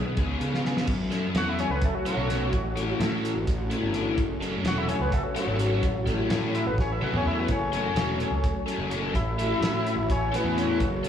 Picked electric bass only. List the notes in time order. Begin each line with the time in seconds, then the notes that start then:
0.17 C#2
0.41 C#3
0.88 F#2
1.35 E2
1.69 C#2
2.17 B1
2.53 A1
3.00 A2
3.35 A1
3.82 G1
4.17 F#1
4.64 E1
5.00 C#2
5.47 G#1
5.83 A1
6.30 A2
6.66 A1
7.13 E2
7.49 F#1
7.95 E1
8.30 C#2
8.78 F#1
9.15 A1
9.61 A2
9.96 A1
10.44 E2
10.80 F#1